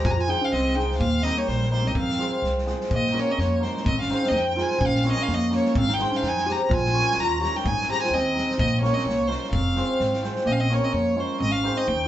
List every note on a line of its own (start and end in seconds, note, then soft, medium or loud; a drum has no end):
0.00 0.26 G#3 medium
0.04 0.33 F2 medium
0.04 0.10 F4 medium
0.04 0.13 G#5 loud
0.04 kick medium
0.08 0.18 G4 medium
0.08 0.22 A#5 medium
0.17 0.30 F4 medium
0.17 0.31 G#5 loud
0.27 0.74 G#3 medium
0.27 0.47 C4 medium
0.27 0.43 D#4 medium
0.27 0.47 F4 medium
0.27 0.47 G#4 medium
0.27 0.46 G5 loud
0.27 snare soft
0.41 0.54 C#4 medium
0.41 0.54 F5 medium
0.52 1.00 C2 medium
0.52 0.78 C4 medium
0.52 0.77 D#5 medium
0.52 snare soft
0.67 snare soft
0.75 1.05 G#3 medium
0.75 0.95 C4 soft
0.75 0.98 D#4 medium
0.75 0.96 F4 soft
0.75 0.96 G#4 medium
0.75 0.97 G5 medium
0.75 snare soft
0.91 snare soft
0.98 1.28 D#2 medium
0.98 1.24 A#3 medium
0.98 1.24 F5 loud
0.98 kick medium
1.22 1.70 G3 medium
1.22 1.43 A#3 medium
1.22 1.38 C4 medium
1.22 1.43 D#4 medium
1.22 1.44 G4 medium
1.22 1.39 D#5 loud
1.22 snare soft
1.37 1.46 A#3 soft
1.37 1.49 C#5 medium
1.44 1.95 A#1 medium
1.44 1.69 G3 medium
1.44 1.71 C5 medium
1.44 snare soft
1.62 snare soft
1.69 2.01 G3 medium
1.69 1.85 G#3 medium
1.69 1.91 A#3 medium
1.69 1.90 D#4 medium
1.69 1.91 G4 medium
1.69 1.88 C5 medium
1.69 snare soft
1.83 1.93 C4 medium
1.83 1.97 D#5 medium
1.83 snare soft
1.94 2.24 F2 medium
1.94 2.39 C4 medium
1.94 2.41 F5 medium
1.94 kick medium
2.09 snare soft
2.18 2.64 G#3 medium
2.18 2.38 C4 medium
2.18 2.38 F4 medium
2.18 2.39 G#4 medium
2.18 snare soft
2.42 2.71 C2 medium
2.42 snare soft
2.58 snare soft
2.65 2.96 G#3 medium
2.65 2.85 C4 soft
2.65 2.85 F4 medium
2.65 2.86 G#4 medium
2.65 snare soft
2.81 snare soft
2.90 3.19 A#1 medium
2.90 3.18 A#3 medium
2.90 kick medium
2.94 3.21 D#5 medium
3.07 snare soft
3.12 3.32 A#3 medium
3.12 3.32 C#4 medium
3.12 3.33 F4 medium
3.12 3.33 A#4 medium
3.16 3.32 A#3 medium
3.16 3.33 C#5 loud
3.16 snare soft
3.31 3.43 C4 medium
3.31 3.41 D#5 medium
3.38 3.66 F2 medium
3.38 3.64 C#5 medium
3.38 snare soft
3.42 3.65 A#3 medium
3.60 3.87 G#3 medium
3.60 3.80 A#3 medium
3.60 3.80 C#4 soft
3.60 3.80 F4 medium
3.60 3.81 A#4 medium
3.60 3.86 C5 medium
3.60 snare soft
3.77 snare soft
3.84 4.13 G#1 medium
3.84 3.99 C4 medium
3.84 3.98 D#5 medium
3.84 kick medium
4.00 4.24 C#4 medium
4.00 4.30 F5 medium
4.00 snare soft
4.09 4.28 C4 medium
4.09 4.28 D#4 medium
4.09 4.29 G#4 medium
4.09 4.29 C5 medium
4.09 snare soft
4.23 4.35 C4 medium
4.23 snare soft
4.28 4.60 F2 medium
4.28 4.39 D#5 medium
4.33 4.58 D#4 medium
4.33 snare soft
4.38 4.63 G5 medium
4.57 4.76 C4 medium
4.57 4.76 D#4 medium
4.57 4.82 F4 medium
4.57 4.76 G#4 medium
4.57 4.77 C5 medium
4.57 snare soft
4.62 4.88 G#5 medium
4.71 snare soft
4.79 5.08 A#1 medium
4.79 5.04 C#4 medium
4.79 kick medium
4.86 5.07 F5 loud
4.95 snare soft
5.04 5.18 C4 medium
5.04 5.23 C#4 medium
5.04 5.23 F4 medium
5.04 5.23 A#4 medium
5.04 5.24 C#5 medium
5.04 snare soft
5.11 5.24 D#5 loud
5.16 5.30 C#4 medium
5.16 snare soft
5.23 5.35 F5 medium
5.28 5.56 F2 medium
5.28 5.52 A#3 medium
5.28 snare soft
5.34 5.55 D#5 loud
5.50 5.75 A#3 medium
5.50 5.70 C#4 medium
5.50 5.70 F4 medium
5.50 5.70 A#4 medium
5.50 5.70 C#5 medium
5.50 snare soft
5.56 5.76 C#5 medium
5.65 snare soft
5.75 6.04 G#1 medium
5.75 5.90 C4 medium
5.75 5.95 F5 loud
5.75 kick medium
5.88 6.13 D#4 medium
5.88 snare soft
5.94 6.18 G5 medium
5.98 6.17 C4 medium
5.98 6.18 D#4 medium
5.98 6.18 G#4 medium
5.98 6.18 C5 medium
5.98 snare soft
6.12 6.24 C#4 medium
6.12 snare soft
6.16 6.29 F5 medium
6.22 6.51 F2 medium
6.22 6.48 D#4 medium
6.22 snare soft
6.28 6.53 G#5 medium
6.37 snare soft
6.45 6.64 C4 medium
6.45 6.65 D#4 medium
6.45 6.63 G4 medium
6.45 6.65 G#4 soft
6.45 6.65 C5 medium
6.45 snare soft
6.52 6.65 A#5 medium
6.64 6.71 G4 medium
6.64 6.75 A#5 medium
6.69 6.98 A#1 loud
6.69 7.19 F4 medium
6.69 kick loud
6.73 7.21 G#5 loud
6.85 snare soft
6.92 7.12 C#4 medium
6.92 7.12 F4 medium
6.92 7.12 A#4 medium
6.92 7.13 C#5 medium
6.98 snare soft
7.11 snare soft
7.16 7.45 D#2 medium
7.16 7.41 F4 medium
7.16 7.42 A#5 loud
7.20 snare soft
7.39 7.59 C#4 medium
7.39 7.59 F4 medium
7.39 7.57 G4 medium
7.39 7.59 A#4 soft
7.39 7.60 C#5 medium
7.39 7.58 A#5 medium
7.43 snare soft
7.55 7.67 D#4 medium
7.55 7.69 G5 medium
7.55 snare soft
7.64 7.92 G#1 medium
7.64 7.89 D#4 medium
7.64 7.90 G#5 loud
7.64 kick medium
7.81 snare soft
7.88 8.07 C4 medium
7.88 8.07 D#4 medium
7.88 8.01 G4 medium
7.88 8.07 G#4 medium
7.88 8.07 C5 medium
7.88 8.01 A#5 loud
7.92 snare soft
8.02 8.15 F4 medium
8.02 8.16 G#5 medium
8.02 snare soft
8.10 8.39 D#2 medium
8.10 8.59 C4 medium
8.14 8.58 D#5 medium
8.14 snare soft
8.33 8.53 C4 soft
8.33 8.53 D#4 soft
8.33 8.54 G#4 medium
8.33 8.54 C5 medium
8.33 snare soft
8.51 snare soft
8.58 8.87 A#1 medium
8.58 8.81 A#3 medium
8.58 8.80 D#5 medium
8.58 kick medium
8.80 8.97 A#3 medium
8.80 9.00 C#4 medium
8.80 9.00 F4 medium
8.80 9.01 A#4 medium
8.80 8.95 C#5 medium
8.80 9.01 C#5 medium
8.80 snare soft
8.93 9.10 C4 medium
8.93 9.05 D#5 medium
8.97 snare soft
9.04 9.33 C2 medium
9.04 9.29 C#5 medium
9.08 9.31 A#3 medium
9.08 snare soft
9.27 9.52 G#3 medium
9.27 9.47 C#4 medium
9.27 9.47 F4 medium
9.27 9.48 A#4 medium
9.27 9.51 C5 medium
9.27 9.48 C#5 medium
9.31 snare soft
9.44 snare soft
9.51 9.80 F1 medium
9.51 10.20 C4 medium
9.51 10.19 F5 medium
9.51 kick medium
9.76 9.95 C4 medium
9.76 9.95 F4 medium
9.76 9.95 G#4 medium
9.76 9.96 C5 medium
9.76 snare soft
10.00 10.29 G#1 medium
10.00 snare soft
10.13 snare soft
10.22 10.42 C4 medium
10.22 10.42 F4 medium
10.22 10.42 G#4 medium
10.22 10.43 C5 medium
10.22 snare soft
10.36 snare soft
10.45 10.75 A#1 medium
10.45 10.52 A#3 medium
10.45 10.54 D#5 medium
10.51 10.60 C#4 medium
10.51 10.61 F5 medium
10.59 10.71 C4 medium
10.59 10.75 D#5 medium
10.69 10.82 A#3 medium
10.69 10.89 C#4 medium
10.69 10.90 F4 medium
10.69 10.90 A#4 medium
10.69 10.90 C#5 medium
10.69 10.86 C#5 medium
10.81 10.94 C4 medium
10.81 10.94 D#5 medium
10.93 11.22 F2 medium
10.93 11.18 A#3 medium
10.93 11.21 C#5 medium
11.16 11.38 G#3 medium
11.16 11.35 C#4 medium
11.16 11.35 F4 medium
11.16 11.36 A#4 medium
11.16 11.36 C#5 medium
11.20 11.40 C5 medium
11.39 11.69 G#1 loud
11.39 11.51 C4 medium
11.39 11.53 D#5 loud
11.50 11.74 C#4 medium
11.50 11.79 F5 medium
11.63 11.82 C4 medium
11.63 11.82 D#4 medium
11.63 11.83 G#4 medium
11.63 11.83 C5 medium
11.73 11.85 C4 medium
11.77 11.89 D#5 medium
11.83 12.08 D#4 medium
11.87 12.08 D#2 loud
11.87 12.08 G5 loud